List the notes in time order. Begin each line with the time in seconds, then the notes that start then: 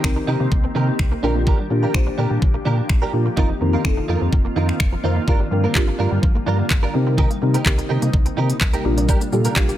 Already playing: D#3 A#3 C4 G4
0.04 C2 D#3 C4 D#4 G4 A#4, finger snap, kick
0.16 D#4, muted clean electric guitar stroke
0.27 C3 D#3 D#4 G4 A#4
0.40 C3 A#3, muted clean electric guitar stroke
0.51 C2 D#3, muted clean electric guitar stroke, kick
0.64 C4, muted clean electric guitar stroke
0.75 C3 D#3 D#4 G4 A#4
0.88 muted clean electric guitar stroke
0.99 C2, finger snap, kick
1.12 A#3, muted clean electric guitar stroke
1.23 A#1 D3 F3 A#3 D4 F4 G4 A#4
1.35 A#3, muted clean electric guitar stroke
1.47 D3 D4 G4 A#4, kick
1.59 G3, muted clean electric guitar stroke
1.70 A#2 D3 D4 F4 G4 A#4, muted clean electric guitar stroke
1.83 A#3 D4 G4 A#4
1.94 A#1 D3 D4 F4 G4 C5, finger snap, muted clean electric guitar stroke, kick
2.07 D4, muted clean electric guitar stroke
2.18 A#2 D3 D4 G4 A#4
2.30 A#2 G3, muted clean electric guitar stroke
2.42 A#1 D3, kick
2.54 A#3, muted clean electric guitar stroke
2.65 A#2 D3 D4 G4 A#4
2.78 muted clean electric guitar stroke
2.89 A#1, finger snap, muted clean electric guitar stroke, kick
3.02 G3 D4 G4 A#4
3.13 A#2 D3 D4 F4 G4 A#4, muted clean electric guitar stroke
3.26 A#3, muted clean electric guitar stroke
3.37 F1 D#3 C4 D#4 F4 A#4, kick
3.49 F3, muted clean electric guitar stroke
3.61 F2 D#3 C4 D#4 F4 A#4, muted clean electric guitar stroke
3.73 A#3 D#4 F4 A#4
3.84 F1 D#3 C4 D#4 F4 A4, finger snap, kick
3.97 D#4, muted clean electric guitar stroke
4.08 F2 D#3 D#4 F4 A#4
4.21 F2 F3, muted clean electric guitar stroke
4.32 F1 D#3, muted clean electric guitar stroke, kick
4.45 A#3, muted clean electric guitar stroke
4.56 F2 D#3 D#4 F4 A#4
4.69 finger snap, muted clean electric guitar stroke
4.80 F1, finger snap, kick
4.92 F3, muted clean electric guitar stroke
5.04 F2 D#3 C4 D#4 F4 A#4 C5
5.16 A#3, muted clean electric guitar stroke
5.27 G1 D3 F3 G3 D4 F4 G4 A#4, kick
5.40 G3, muted clean electric guitar stroke
5.51 G2 F3 D4 F4 G4 A#4, muted clean electric guitar stroke
5.64 A#3 D4 F4 A#4
5.75 G1 F3 D4 F4 G4 A#4, muted clean electric guitar stroke, kick, clap
5.87 F4, muted clean electric guitar stroke
5.98 G2 F3 D4 F4 A#4
6.11 G2 G3, muted clean electric guitar stroke
6.22 G1 F3, muted clean electric guitar stroke, kick
6.35 A#3, muted clean electric guitar stroke
6.46 G2 F3 D4 F4 A#4
6.59 muted clean electric guitar stroke
6.70 G1, muted clean electric guitar stroke, kick, clap
6.83 G3 D4 F4 A#4
6.94 C3 D#3 C4 D#4 G4 A#4, muted clean electric guitar stroke
7.07 C4, muted clean electric guitar stroke
7.18 D#3 D#4 G4 A#4, kick
7.30 A#3, muted clean electric guitar stroke, closed hi-hat
7.42 C3 D#3 C4 D#4 G4 A#4, muted clean electric guitar stroke
7.54 C4 D#4 G4 A#4, closed hi-hat
7.66 C2 D#3 C4 D#4 G4 A#4, muted clean electric guitar stroke, kick, clap
7.78 D#4, muted clean electric guitar stroke, closed hi-hat
7.89 C3 D#3 D#4 G4 A#4
8.02 C3 A#3, muted clean electric guitar stroke, closed hi-hat
8.13 C2 D#3, muted clean electric guitar stroke, kick
8.26 C4, muted clean electric guitar stroke, closed hi-hat
8.37 C3 D#3 D#4 G4 A#4
8.50 muted clean electric guitar stroke, closed hi-hat
8.61 C2, muted clean electric guitar stroke, kick, clap
8.73 A#3 D#4 G4 A#4, closed hi-hat
8.85 A#1 D3 G3 D4 F4 G4 A#4, muted clean electric guitar stroke
8.97 D4, muted clean electric guitar stroke, closed hi-hat
9.09 G3 D4 G4 A#4, kick, shaker
9.21 A#3, muted clean electric guitar stroke, closed hi-hat, shaker
9.32 A#2 G3 D4 F4 G4 A4, muted clean electric guitar stroke, shaker
9.45 D4 G4 A#4, closed hi-hat, shaker
9.56 A#1 G3 D4 F4 G4 A#4, muted clean electric guitar stroke, kick, clap, shaker
9.69 G4, muted clean electric guitar stroke, closed hi-hat, shaker